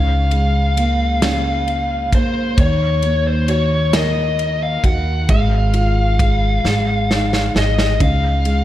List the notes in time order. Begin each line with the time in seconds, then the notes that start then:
Already playing: C#2 C#3 F5
0.31 G#3, ride
0.77 A#3, ride
1.22 C#4, snare, ride
1.68 ride
2.13 A#1 A#3 C5, kick, ride
2.58 D#2 D#3 C#5, kick, ride
3.03 A#3, ride
3.27 C5
3.48 F#4 C#5, ride
3.93 A#4 D#5, snare, ride
4.39 ride
4.63 F5
4.83 D#2 F#4 F#5, kick, ride
5.29 G#1 G#3 F5, kick, ride
5.74 F4, ride
6.19 G#3, kick, ride
6.64 G#1 G#3, snare
7.10 D#4, snare
7.33 snare
7.55 G#1 G#4 D#5, snare
7.78 snare
8.00 C#2 C#3 F5, kick, ride
8.45 G#3, ride